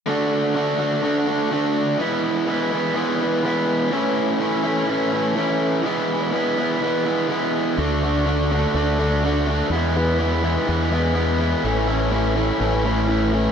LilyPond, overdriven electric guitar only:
\new Staff \with { instrumentName = "Overdriven electric guitar" } { \time 4/4 \key d \lydian \tempo 4 = 124 <d a d' fis'>4 <d a d' fis'>8 <a d' fis'>8 <d a d' fis'>8 <a d' fis'>8 <d a d' fis'>4 | <e gis b e'>4 <e gis b e'>8 <gis b e'>8 <e gis b e'>8 <gis b e'>8 <e gis b e'>4 | <a, e a cis' e'>4 <e a cis' e'>8 <a cis' e'>8 <a, e a cis' e'>8 <a cis' e'>8 <e a cis' e'>4 | <e gis b e'>4 <e gis b e'>8 <gis b e'>8 <e gis b e'>8 <gis b e'>8 <e gis b e'>4 |
<d a d' fis'>8 <d a d' fis'>8 <d a d' fis'>8 <d a d' fis'>8 <d a d' fis'>8 <d a d' fis'>8 <d a d' fis'>8 <d a d' fis'>8 | <e gis b e'>8 <e gis b e'>8 <e gis b e'>8 <e gis b e'>8 <e gis b e'>8 <e gis b e'>8 <e gis b e'>8 <e gis b e'>8 | <a, e a cis' e'>8 <a, e a cis' e'>8 <a, e a cis' e'>8 <a, e a cis' e'>8 <a, e a cis' e'>8 <a, e a cis' e'>8 <a, e a cis' e'>8 <a, e a cis' e'>8 | }